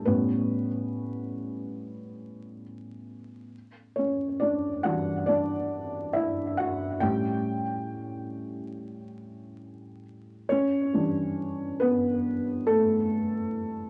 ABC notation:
X:1
M:4/4
L:1/8
Q:"Swing 16ths" 1/4=69
K:Edor
V:1 name="Felt piano"
[B,B]6 z2 | z [Cc] [Dd] [Ff] [Dd]2 [Ee] [Ff] | [Gg]6- [Gg] z | [Cc]3 [B,B]2 [A,A]3 |]
V:2 name="Felt piano" clef=bass
[A,,G,C] z6 z | z3 [E,G,D]4- [E,G,D] | [A,,G,C] z6 z | z [E,G,D]6- [E,G,D] |]